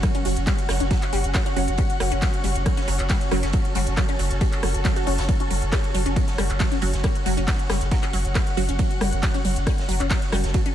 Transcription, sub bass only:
0.25 0.36 F#1 loud
0.37 0.47 F#1 medium
0.69 0.80 F#1 loud
0.80 0.91 F#1 medium
1.13 1.23 F#1 loud
1.24 1.34 F#1 medium
1.56 1.67 F#1 loud
1.68 1.78 F#1 medium
2.00 2.11 F#1 loud
2.12 2.22 F#1 medium
2.44 2.55 F#1 loud
2.55 2.66 F#1 medium
2.88 2.99 F#1 loud
2.99 3.09 F#1 medium
3.31 3.42 F#1 loud
3.43 3.53 F#1 medium
3.75 3.86 F#1 loud
3.87 3.97 F#1 medium
4.19 4.30 F#1 loud
4.31 4.41 F#1 medium
4.63 4.74 F#1 loud
4.74 4.85 F#1 medium
5.07 5.18 F#1 loud
5.18 5.28 F#1 medium
5.51 5.61 F#1 loud
5.62 5.72 F#1 medium
5.94 6.05 F#1 loud
6.06 6.16 F#1 medium
6.38 6.49 F#1 loud
6.50 6.60 F#1 medium
6.82 6.93 F#1 loud
6.93 7.04 F#1 medium
7.26 7.37 F#1 loud
7.37 7.47 F#1 medium
7.70 7.80 F#1 loud
7.81 7.91 F#1 medium
8.13 8.24 F#1 loud
8.25 8.35 F#1 medium
8.57 8.68 F#1 loud
8.69 8.79 F#1 medium
9.01 9.12 F#1 loud
9.12 9.23 F#1 medium
9.45 9.56 F#1 loud
9.56 9.67 F#1 medium
9.89 10.00 F#1 loud
10.00 10.10 F#1 medium
10.32 10.43 F#1 loud
10.44 10.54 F#1 medium

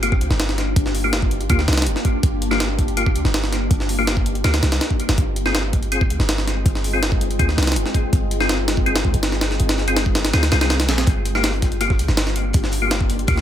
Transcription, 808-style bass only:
0.00 0.22 G1 loud
0.21 0.30 D2 medium
0.30 0.75 G1 medium
0.76 1.49 G1 loud
1.50 1.66 D2 medium
1.68 1.88 C2 medium
1.87 1.95 G1 medium
2.23 3.17 G1 loud
3.15 3.24 D2 medium
3.25 3.69 G1 medium
3.71 4.43 G1 loud
4.44 4.61 D2 loud
4.63 4.79 C2 medium
5.09 5.17 G1 loud
5.18 6.12 G1 loud
6.10 6.19 D2 medium
6.19 6.64 G1 medium
6.66 7.38 G1 loud
7.39 7.56 D2 loud
7.57 7.77 C2 medium
7.76 7.84 G1 medium
8.13 9.06 G1 loud
9.05 9.13 D2 medium
9.14 9.58 G1 medium
9.60 10.32 G1 loud
10.34 10.50 D2 loud
10.52 10.90 C2 medium
10.89 11.05 A#1 loud
11.07 12.01 G1 loud
11.99 12.08 D2 medium
12.08 12.53 G1 medium
12.54 13.27 G1 loud
13.28 13.41 D2 loud

